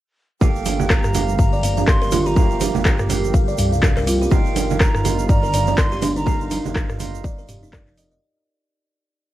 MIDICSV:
0, 0, Header, 1, 7, 480
1, 0, Start_track
1, 0, Key_signature, -2, "minor"
1, 0, Tempo, 487805
1, 406, Time_signature, 4, 2, 24, 8
1, 9190, End_track
2, 0, Start_track
2, 0, Title_t, "Flute"
2, 0, Program_c, 0, 73
2, 408, Note_on_c, 0, 79, 86
2, 888, Note_on_c, 0, 82, 102
2, 903, Note_off_c, 0, 79, 0
2, 1361, Note_off_c, 0, 82, 0
2, 1367, Note_on_c, 0, 82, 111
2, 1813, Note_off_c, 0, 82, 0
2, 1848, Note_on_c, 0, 84, 111
2, 2226, Note_on_c, 0, 82, 102
2, 2241, Note_off_c, 0, 84, 0
2, 2705, Note_off_c, 0, 82, 0
2, 4248, Note_on_c, 0, 79, 89
2, 4694, Note_off_c, 0, 79, 0
2, 4729, Note_on_c, 0, 82, 98
2, 5174, Note_off_c, 0, 82, 0
2, 5207, Note_on_c, 0, 82, 116
2, 5686, Note_on_c, 0, 84, 114
2, 5700, Note_off_c, 0, 82, 0
2, 6058, Note_off_c, 0, 84, 0
2, 6064, Note_on_c, 0, 82, 104
2, 6511, Note_off_c, 0, 82, 0
2, 9190, End_track
3, 0, Start_track
3, 0, Title_t, "Kalimba"
3, 0, Program_c, 1, 108
3, 408, Note_on_c, 1, 67, 86
3, 482, Note_off_c, 1, 67, 0
3, 647, Note_on_c, 1, 67, 70
3, 721, Note_off_c, 1, 67, 0
3, 1367, Note_on_c, 1, 77, 81
3, 1498, Note_off_c, 1, 77, 0
3, 1504, Note_on_c, 1, 74, 72
3, 1601, Note_off_c, 1, 74, 0
3, 1607, Note_on_c, 1, 77, 78
3, 1681, Note_off_c, 1, 77, 0
3, 1745, Note_on_c, 1, 77, 80
3, 1837, Note_off_c, 1, 77, 0
3, 1985, Note_on_c, 1, 70, 103
3, 2077, Note_off_c, 1, 70, 0
3, 2086, Note_on_c, 1, 65, 100
3, 2161, Note_off_c, 1, 65, 0
3, 2224, Note_on_c, 1, 67, 101
3, 2316, Note_off_c, 1, 67, 0
3, 2327, Note_on_c, 1, 67, 81
3, 2401, Note_off_c, 1, 67, 0
3, 2567, Note_on_c, 1, 67, 76
3, 2641, Note_off_c, 1, 67, 0
3, 3288, Note_on_c, 1, 77, 79
3, 3418, Note_off_c, 1, 77, 0
3, 3425, Note_on_c, 1, 74, 74
3, 3522, Note_off_c, 1, 74, 0
3, 3528, Note_on_c, 1, 77, 75
3, 3602, Note_off_c, 1, 77, 0
3, 3666, Note_on_c, 1, 77, 74
3, 3757, Note_off_c, 1, 77, 0
3, 3905, Note_on_c, 1, 70, 109
3, 3997, Note_off_c, 1, 70, 0
3, 4008, Note_on_c, 1, 65, 101
3, 4082, Note_off_c, 1, 65, 0
3, 4146, Note_on_c, 1, 67, 96
3, 4237, Note_off_c, 1, 67, 0
3, 4248, Note_on_c, 1, 63, 90
3, 4322, Note_off_c, 1, 63, 0
3, 4488, Note_on_c, 1, 63, 80
3, 4561, Note_off_c, 1, 63, 0
3, 5208, Note_on_c, 1, 74, 86
3, 5338, Note_off_c, 1, 74, 0
3, 5346, Note_on_c, 1, 70, 75
3, 5442, Note_off_c, 1, 70, 0
3, 5450, Note_on_c, 1, 74, 77
3, 5523, Note_off_c, 1, 74, 0
3, 5588, Note_on_c, 1, 74, 80
3, 5678, Note_off_c, 1, 74, 0
3, 5827, Note_on_c, 1, 67, 107
3, 5918, Note_off_c, 1, 67, 0
3, 5930, Note_on_c, 1, 62, 99
3, 6002, Note_off_c, 1, 62, 0
3, 6066, Note_on_c, 1, 63, 103
3, 6157, Note_off_c, 1, 63, 0
3, 6167, Note_on_c, 1, 63, 84
3, 6241, Note_off_c, 1, 63, 0
3, 6409, Note_on_c, 1, 63, 77
3, 6482, Note_off_c, 1, 63, 0
3, 7128, Note_on_c, 1, 74, 79
3, 7258, Note_off_c, 1, 74, 0
3, 7266, Note_on_c, 1, 70, 74
3, 7363, Note_off_c, 1, 70, 0
3, 7369, Note_on_c, 1, 67, 81
3, 7442, Note_off_c, 1, 67, 0
3, 7507, Note_on_c, 1, 63, 80
3, 7561, Note_off_c, 1, 63, 0
3, 7610, Note_on_c, 1, 74, 85
3, 7739, Note_off_c, 1, 74, 0
3, 7747, Note_on_c, 1, 63, 76
3, 7838, Note_off_c, 1, 63, 0
3, 7850, Note_on_c, 1, 75, 76
3, 7922, Note_off_c, 1, 75, 0
3, 7986, Note_on_c, 1, 75, 79
3, 8077, Note_off_c, 1, 75, 0
3, 9190, End_track
4, 0, Start_track
4, 0, Title_t, "Tine electric piano"
4, 0, Program_c, 2, 4
4, 407, Note_on_c, 2, 58, 94
4, 407, Note_on_c, 2, 69, 83
4, 407, Note_on_c, 2, 77, 99
4, 408, Note_on_c, 2, 67, 85
4, 1102, Note_off_c, 2, 58, 0
4, 1102, Note_off_c, 2, 69, 0
4, 1102, Note_off_c, 2, 77, 0
4, 1103, Note_off_c, 2, 67, 0
4, 1128, Note_on_c, 2, 57, 64
4, 1129, Note_on_c, 2, 58, 67
4, 1129, Note_on_c, 2, 67, 63
4, 1129, Note_on_c, 2, 77, 79
4, 2303, Note_off_c, 2, 57, 0
4, 2303, Note_off_c, 2, 58, 0
4, 2303, Note_off_c, 2, 67, 0
4, 2303, Note_off_c, 2, 77, 0
4, 2327, Note_on_c, 2, 57, 83
4, 2327, Note_on_c, 2, 58, 93
4, 2327, Note_on_c, 2, 67, 83
4, 2327, Note_on_c, 2, 77, 96
4, 3022, Note_off_c, 2, 57, 0
4, 3022, Note_off_c, 2, 58, 0
4, 3022, Note_off_c, 2, 67, 0
4, 3022, Note_off_c, 2, 77, 0
4, 3045, Note_on_c, 2, 58, 73
4, 3045, Note_on_c, 2, 69, 62
4, 3046, Note_on_c, 2, 67, 67
4, 3046, Note_on_c, 2, 77, 77
4, 4221, Note_off_c, 2, 58, 0
4, 4222, Note_off_c, 2, 67, 0
4, 4222, Note_off_c, 2, 69, 0
4, 4222, Note_off_c, 2, 77, 0
4, 4246, Note_on_c, 2, 63, 94
4, 4246, Note_on_c, 2, 65, 88
4, 4247, Note_on_c, 2, 70, 83
4, 4247, Note_on_c, 2, 77, 106
4, 4942, Note_off_c, 2, 63, 0
4, 4942, Note_off_c, 2, 65, 0
4, 4942, Note_off_c, 2, 70, 0
4, 4942, Note_off_c, 2, 77, 0
4, 4966, Note_on_c, 2, 70, 62
4, 4967, Note_on_c, 2, 63, 70
4, 4967, Note_on_c, 2, 65, 64
4, 4967, Note_on_c, 2, 77, 76
4, 6142, Note_off_c, 2, 63, 0
4, 6142, Note_off_c, 2, 65, 0
4, 6142, Note_off_c, 2, 70, 0
4, 6142, Note_off_c, 2, 77, 0
4, 6166, Note_on_c, 2, 63, 97
4, 6166, Note_on_c, 2, 70, 86
4, 6166, Note_on_c, 2, 77, 105
4, 6167, Note_on_c, 2, 65, 88
4, 6862, Note_off_c, 2, 63, 0
4, 6862, Note_off_c, 2, 65, 0
4, 6862, Note_off_c, 2, 70, 0
4, 6862, Note_off_c, 2, 77, 0
4, 6887, Note_on_c, 2, 63, 67
4, 6887, Note_on_c, 2, 65, 62
4, 6887, Note_on_c, 2, 70, 66
4, 6887, Note_on_c, 2, 77, 79
4, 8062, Note_off_c, 2, 63, 0
4, 8062, Note_off_c, 2, 65, 0
4, 8062, Note_off_c, 2, 70, 0
4, 8062, Note_off_c, 2, 77, 0
4, 9190, End_track
5, 0, Start_track
5, 0, Title_t, "Analog synth pad"
5, 0, Program_c, 3, 89
5, 406, Note_on_c, 3, 46, 76
5, 407, Note_on_c, 3, 53, 84
5, 407, Note_on_c, 3, 67, 92
5, 4208, Note_off_c, 3, 67, 0
5, 4245, Note_on_c, 3, 51, 84
5, 4245, Note_on_c, 3, 65, 93
5, 8047, Note_off_c, 3, 46, 0
5, 8047, Note_off_c, 3, 53, 0
5, 8048, Note_off_c, 3, 51, 0
5, 8048, Note_off_c, 3, 65, 0
5, 9190, End_track
6, 0, Start_track
6, 0, Title_t, "Detuned saw bass"
6, 0, Program_c, 4, 39
6, 406, Note_on_c, 4, 31, 97
6, 1799, Note_off_c, 4, 31, 0
6, 1846, Note_on_c, 4, 31, 99
6, 2640, Note_off_c, 4, 31, 0
6, 2703, Note_on_c, 4, 31, 85
6, 3478, Note_off_c, 4, 31, 0
6, 3525, Note_on_c, 4, 36, 89
6, 4198, Note_off_c, 4, 36, 0
6, 4245, Note_on_c, 4, 31, 94
6, 5638, Note_off_c, 4, 31, 0
6, 5686, Note_on_c, 4, 31, 100
6, 6480, Note_off_c, 4, 31, 0
6, 6545, Note_on_c, 4, 31, 81
6, 7319, Note_off_c, 4, 31, 0
6, 7366, Note_on_c, 4, 29, 102
6, 8039, Note_off_c, 4, 29, 0
6, 9190, End_track
7, 0, Start_track
7, 0, Title_t, "Drums"
7, 406, Note_on_c, 9, 36, 121
7, 406, Note_on_c, 9, 64, 109
7, 408, Note_on_c, 9, 63, 91
7, 410, Note_on_c, 9, 82, 47
7, 504, Note_off_c, 9, 64, 0
7, 505, Note_off_c, 9, 36, 0
7, 506, Note_off_c, 9, 63, 0
7, 509, Note_off_c, 9, 82, 0
7, 545, Note_on_c, 9, 82, 27
7, 643, Note_off_c, 9, 82, 0
7, 645, Note_on_c, 9, 82, 88
7, 647, Note_on_c, 9, 46, 96
7, 647, Note_on_c, 9, 63, 106
7, 744, Note_off_c, 9, 82, 0
7, 745, Note_off_c, 9, 46, 0
7, 746, Note_off_c, 9, 63, 0
7, 783, Note_on_c, 9, 64, 97
7, 791, Note_on_c, 9, 82, 36
7, 882, Note_off_c, 9, 64, 0
7, 886, Note_on_c, 9, 36, 118
7, 887, Note_off_c, 9, 82, 0
7, 887, Note_on_c, 9, 37, 107
7, 887, Note_on_c, 9, 39, 108
7, 887, Note_on_c, 9, 63, 61
7, 887, Note_on_c, 9, 82, 55
7, 985, Note_off_c, 9, 36, 0
7, 985, Note_off_c, 9, 37, 0
7, 985, Note_off_c, 9, 39, 0
7, 985, Note_off_c, 9, 63, 0
7, 985, Note_off_c, 9, 82, 0
7, 1021, Note_on_c, 9, 82, 28
7, 1026, Note_on_c, 9, 37, 62
7, 1026, Note_on_c, 9, 45, 80
7, 1119, Note_off_c, 9, 82, 0
7, 1124, Note_off_c, 9, 37, 0
7, 1124, Note_off_c, 9, 45, 0
7, 1125, Note_on_c, 9, 82, 102
7, 1128, Note_on_c, 9, 46, 92
7, 1131, Note_on_c, 9, 64, 102
7, 1132, Note_on_c, 9, 63, 66
7, 1224, Note_off_c, 9, 82, 0
7, 1227, Note_off_c, 9, 46, 0
7, 1230, Note_off_c, 9, 63, 0
7, 1230, Note_off_c, 9, 64, 0
7, 1264, Note_on_c, 9, 82, 40
7, 1362, Note_off_c, 9, 82, 0
7, 1366, Note_on_c, 9, 36, 104
7, 1367, Note_on_c, 9, 82, 57
7, 1368, Note_on_c, 9, 45, 85
7, 1464, Note_off_c, 9, 36, 0
7, 1466, Note_off_c, 9, 45, 0
7, 1466, Note_off_c, 9, 82, 0
7, 1505, Note_on_c, 9, 82, 24
7, 1603, Note_off_c, 9, 82, 0
7, 1607, Note_on_c, 9, 45, 82
7, 1607, Note_on_c, 9, 46, 94
7, 1617, Note_on_c, 9, 82, 95
7, 1705, Note_off_c, 9, 45, 0
7, 1705, Note_off_c, 9, 46, 0
7, 1716, Note_off_c, 9, 82, 0
7, 1744, Note_on_c, 9, 82, 38
7, 1749, Note_on_c, 9, 63, 94
7, 1842, Note_off_c, 9, 82, 0
7, 1846, Note_on_c, 9, 36, 124
7, 1846, Note_on_c, 9, 37, 106
7, 1846, Note_on_c, 9, 39, 105
7, 1848, Note_off_c, 9, 63, 0
7, 1850, Note_on_c, 9, 82, 55
7, 1944, Note_off_c, 9, 36, 0
7, 1944, Note_off_c, 9, 37, 0
7, 1944, Note_off_c, 9, 39, 0
7, 1948, Note_off_c, 9, 82, 0
7, 1990, Note_on_c, 9, 82, 27
7, 2081, Note_off_c, 9, 82, 0
7, 2081, Note_on_c, 9, 82, 93
7, 2086, Note_on_c, 9, 63, 109
7, 2087, Note_on_c, 9, 46, 94
7, 2089, Note_on_c, 9, 64, 113
7, 2179, Note_off_c, 9, 82, 0
7, 2185, Note_off_c, 9, 46, 0
7, 2185, Note_off_c, 9, 63, 0
7, 2187, Note_off_c, 9, 64, 0
7, 2224, Note_on_c, 9, 82, 42
7, 2323, Note_off_c, 9, 82, 0
7, 2326, Note_on_c, 9, 36, 125
7, 2327, Note_on_c, 9, 82, 54
7, 2328, Note_on_c, 9, 63, 91
7, 2329, Note_on_c, 9, 64, 104
7, 2424, Note_off_c, 9, 36, 0
7, 2425, Note_off_c, 9, 82, 0
7, 2427, Note_off_c, 9, 63, 0
7, 2428, Note_off_c, 9, 64, 0
7, 2463, Note_on_c, 9, 82, 28
7, 2561, Note_off_c, 9, 82, 0
7, 2565, Note_on_c, 9, 82, 105
7, 2566, Note_on_c, 9, 46, 98
7, 2570, Note_on_c, 9, 63, 102
7, 2663, Note_off_c, 9, 82, 0
7, 2665, Note_off_c, 9, 46, 0
7, 2668, Note_off_c, 9, 63, 0
7, 2705, Note_on_c, 9, 64, 98
7, 2707, Note_on_c, 9, 82, 37
7, 2803, Note_off_c, 9, 64, 0
7, 2803, Note_on_c, 9, 63, 58
7, 2805, Note_off_c, 9, 82, 0
7, 2806, Note_on_c, 9, 36, 127
7, 2808, Note_on_c, 9, 37, 104
7, 2808, Note_on_c, 9, 39, 106
7, 2808, Note_on_c, 9, 82, 57
7, 2901, Note_off_c, 9, 63, 0
7, 2904, Note_off_c, 9, 36, 0
7, 2906, Note_off_c, 9, 37, 0
7, 2906, Note_off_c, 9, 39, 0
7, 2906, Note_off_c, 9, 82, 0
7, 2940, Note_on_c, 9, 82, 26
7, 2946, Note_on_c, 9, 37, 63
7, 2946, Note_on_c, 9, 45, 79
7, 3038, Note_off_c, 9, 82, 0
7, 3044, Note_off_c, 9, 37, 0
7, 3044, Note_off_c, 9, 45, 0
7, 3046, Note_on_c, 9, 64, 92
7, 3047, Note_on_c, 9, 63, 70
7, 3048, Note_on_c, 9, 46, 95
7, 3050, Note_on_c, 9, 82, 95
7, 3145, Note_off_c, 9, 64, 0
7, 3146, Note_off_c, 9, 63, 0
7, 3147, Note_off_c, 9, 46, 0
7, 3148, Note_off_c, 9, 82, 0
7, 3192, Note_on_c, 9, 82, 39
7, 3286, Note_on_c, 9, 36, 113
7, 3290, Note_off_c, 9, 82, 0
7, 3290, Note_on_c, 9, 82, 57
7, 3384, Note_off_c, 9, 36, 0
7, 3388, Note_off_c, 9, 82, 0
7, 3424, Note_on_c, 9, 82, 28
7, 3522, Note_off_c, 9, 82, 0
7, 3524, Note_on_c, 9, 82, 92
7, 3528, Note_on_c, 9, 45, 84
7, 3528, Note_on_c, 9, 46, 99
7, 3622, Note_off_c, 9, 82, 0
7, 3627, Note_off_c, 9, 45, 0
7, 3627, Note_off_c, 9, 46, 0
7, 3669, Note_on_c, 9, 82, 40
7, 3764, Note_on_c, 9, 63, 83
7, 3766, Note_on_c, 9, 36, 124
7, 3768, Note_off_c, 9, 82, 0
7, 3768, Note_on_c, 9, 37, 109
7, 3768, Note_on_c, 9, 39, 101
7, 3768, Note_on_c, 9, 45, 73
7, 3769, Note_on_c, 9, 82, 55
7, 3863, Note_off_c, 9, 63, 0
7, 3864, Note_off_c, 9, 36, 0
7, 3866, Note_off_c, 9, 37, 0
7, 3866, Note_off_c, 9, 39, 0
7, 3866, Note_off_c, 9, 45, 0
7, 3867, Note_off_c, 9, 82, 0
7, 3905, Note_on_c, 9, 39, 31
7, 3907, Note_on_c, 9, 82, 26
7, 4004, Note_off_c, 9, 39, 0
7, 4006, Note_off_c, 9, 82, 0
7, 4008, Note_on_c, 9, 46, 93
7, 4012, Note_on_c, 9, 82, 98
7, 4106, Note_off_c, 9, 46, 0
7, 4111, Note_off_c, 9, 82, 0
7, 4156, Note_on_c, 9, 82, 42
7, 4242, Note_off_c, 9, 82, 0
7, 4242, Note_on_c, 9, 82, 55
7, 4246, Note_on_c, 9, 36, 121
7, 4246, Note_on_c, 9, 64, 114
7, 4248, Note_on_c, 9, 63, 91
7, 4341, Note_off_c, 9, 82, 0
7, 4344, Note_off_c, 9, 36, 0
7, 4345, Note_off_c, 9, 64, 0
7, 4346, Note_off_c, 9, 63, 0
7, 4385, Note_on_c, 9, 82, 29
7, 4484, Note_off_c, 9, 82, 0
7, 4487, Note_on_c, 9, 63, 104
7, 4488, Note_on_c, 9, 46, 95
7, 4494, Note_on_c, 9, 82, 101
7, 4586, Note_off_c, 9, 46, 0
7, 4586, Note_off_c, 9, 63, 0
7, 4592, Note_off_c, 9, 82, 0
7, 4627, Note_on_c, 9, 82, 40
7, 4634, Note_on_c, 9, 64, 87
7, 4726, Note_off_c, 9, 82, 0
7, 4726, Note_on_c, 9, 36, 127
7, 4728, Note_on_c, 9, 37, 114
7, 4728, Note_on_c, 9, 39, 99
7, 4729, Note_on_c, 9, 82, 51
7, 4730, Note_on_c, 9, 63, 68
7, 4732, Note_off_c, 9, 64, 0
7, 4824, Note_off_c, 9, 36, 0
7, 4826, Note_off_c, 9, 37, 0
7, 4826, Note_off_c, 9, 39, 0
7, 4828, Note_off_c, 9, 63, 0
7, 4828, Note_off_c, 9, 82, 0
7, 4866, Note_on_c, 9, 37, 65
7, 4866, Note_on_c, 9, 45, 77
7, 4872, Note_on_c, 9, 82, 26
7, 4964, Note_off_c, 9, 37, 0
7, 4964, Note_off_c, 9, 45, 0
7, 4968, Note_on_c, 9, 46, 95
7, 4969, Note_on_c, 9, 64, 90
7, 4971, Note_off_c, 9, 82, 0
7, 4971, Note_on_c, 9, 63, 75
7, 4973, Note_on_c, 9, 82, 100
7, 5067, Note_off_c, 9, 46, 0
7, 5068, Note_off_c, 9, 64, 0
7, 5070, Note_off_c, 9, 63, 0
7, 5072, Note_off_c, 9, 82, 0
7, 5104, Note_on_c, 9, 82, 44
7, 5203, Note_off_c, 9, 82, 0
7, 5206, Note_on_c, 9, 36, 121
7, 5206, Note_on_c, 9, 82, 60
7, 5208, Note_on_c, 9, 45, 85
7, 5305, Note_off_c, 9, 36, 0
7, 5305, Note_off_c, 9, 82, 0
7, 5306, Note_off_c, 9, 45, 0
7, 5352, Note_on_c, 9, 82, 28
7, 5448, Note_on_c, 9, 45, 80
7, 5448, Note_on_c, 9, 46, 92
7, 5449, Note_off_c, 9, 82, 0
7, 5449, Note_on_c, 9, 82, 90
7, 5547, Note_off_c, 9, 45, 0
7, 5547, Note_off_c, 9, 46, 0
7, 5547, Note_off_c, 9, 82, 0
7, 5577, Note_on_c, 9, 82, 40
7, 5586, Note_on_c, 9, 63, 94
7, 5676, Note_off_c, 9, 82, 0
7, 5682, Note_on_c, 9, 82, 55
7, 5684, Note_off_c, 9, 63, 0
7, 5686, Note_on_c, 9, 36, 127
7, 5688, Note_on_c, 9, 37, 114
7, 5688, Note_on_c, 9, 39, 95
7, 5780, Note_off_c, 9, 82, 0
7, 5784, Note_off_c, 9, 36, 0
7, 5786, Note_off_c, 9, 37, 0
7, 5786, Note_off_c, 9, 39, 0
7, 5821, Note_on_c, 9, 82, 30
7, 5920, Note_off_c, 9, 82, 0
7, 5923, Note_on_c, 9, 63, 106
7, 5927, Note_on_c, 9, 46, 96
7, 5927, Note_on_c, 9, 82, 92
7, 5929, Note_on_c, 9, 64, 100
7, 6022, Note_off_c, 9, 63, 0
7, 6025, Note_off_c, 9, 46, 0
7, 6025, Note_off_c, 9, 82, 0
7, 6028, Note_off_c, 9, 64, 0
7, 6066, Note_on_c, 9, 82, 41
7, 6160, Note_on_c, 9, 63, 103
7, 6164, Note_off_c, 9, 82, 0
7, 6166, Note_on_c, 9, 36, 120
7, 6168, Note_on_c, 9, 64, 104
7, 6170, Note_on_c, 9, 82, 58
7, 6259, Note_off_c, 9, 63, 0
7, 6265, Note_off_c, 9, 36, 0
7, 6266, Note_off_c, 9, 64, 0
7, 6269, Note_off_c, 9, 82, 0
7, 6304, Note_on_c, 9, 82, 29
7, 6402, Note_off_c, 9, 82, 0
7, 6405, Note_on_c, 9, 82, 98
7, 6407, Note_on_c, 9, 46, 91
7, 6410, Note_on_c, 9, 63, 104
7, 6503, Note_off_c, 9, 82, 0
7, 6505, Note_off_c, 9, 46, 0
7, 6509, Note_off_c, 9, 63, 0
7, 6549, Note_on_c, 9, 64, 89
7, 6549, Note_on_c, 9, 82, 40
7, 6646, Note_on_c, 9, 36, 127
7, 6647, Note_off_c, 9, 82, 0
7, 6647, Note_on_c, 9, 37, 108
7, 6647, Note_on_c, 9, 39, 93
7, 6648, Note_off_c, 9, 64, 0
7, 6648, Note_on_c, 9, 63, 65
7, 6652, Note_on_c, 9, 82, 53
7, 6745, Note_off_c, 9, 36, 0
7, 6746, Note_off_c, 9, 37, 0
7, 6746, Note_off_c, 9, 39, 0
7, 6746, Note_off_c, 9, 63, 0
7, 6750, Note_off_c, 9, 82, 0
7, 6783, Note_on_c, 9, 82, 29
7, 6785, Note_on_c, 9, 37, 63
7, 6785, Note_on_c, 9, 45, 77
7, 6880, Note_on_c, 9, 63, 75
7, 6881, Note_off_c, 9, 82, 0
7, 6883, Note_off_c, 9, 37, 0
7, 6883, Note_off_c, 9, 45, 0
7, 6887, Note_on_c, 9, 82, 93
7, 6888, Note_on_c, 9, 46, 90
7, 6891, Note_on_c, 9, 64, 86
7, 6979, Note_off_c, 9, 63, 0
7, 6985, Note_off_c, 9, 82, 0
7, 6987, Note_off_c, 9, 46, 0
7, 6989, Note_off_c, 9, 64, 0
7, 7033, Note_on_c, 9, 82, 43
7, 7126, Note_on_c, 9, 36, 113
7, 7130, Note_off_c, 9, 82, 0
7, 7130, Note_on_c, 9, 82, 57
7, 7225, Note_off_c, 9, 36, 0
7, 7228, Note_off_c, 9, 82, 0
7, 7265, Note_on_c, 9, 82, 26
7, 7363, Note_off_c, 9, 82, 0
7, 7367, Note_on_c, 9, 45, 86
7, 7367, Note_on_c, 9, 46, 89
7, 7368, Note_on_c, 9, 82, 103
7, 7466, Note_off_c, 9, 45, 0
7, 7466, Note_off_c, 9, 46, 0
7, 7466, Note_off_c, 9, 82, 0
7, 7509, Note_on_c, 9, 82, 46
7, 7607, Note_on_c, 9, 36, 126
7, 7608, Note_off_c, 9, 82, 0
7, 7608, Note_on_c, 9, 82, 63
7, 7609, Note_on_c, 9, 37, 115
7, 7609, Note_on_c, 9, 39, 94
7, 7609, Note_on_c, 9, 45, 78
7, 7617, Note_on_c, 9, 63, 81
7, 7705, Note_off_c, 9, 36, 0
7, 7706, Note_off_c, 9, 82, 0
7, 7707, Note_off_c, 9, 37, 0
7, 7707, Note_off_c, 9, 39, 0
7, 7707, Note_off_c, 9, 45, 0
7, 7716, Note_off_c, 9, 63, 0
7, 7746, Note_on_c, 9, 39, 30
7, 7748, Note_on_c, 9, 82, 29
7, 7845, Note_off_c, 9, 39, 0
7, 7846, Note_off_c, 9, 82, 0
7, 7848, Note_on_c, 9, 46, 91
7, 7850, Note_on_c, 9, 82, 89
7, 7946, Note_off_c, 9, 46, 0
7, 7948, Note_off_c, 9, 82, 0
7, 7984, Note_on_c, 9, 82, 43
7, 8082, Note_off_c, 9, 82, 0
7, 9190, End_track
0, 0, End_of_file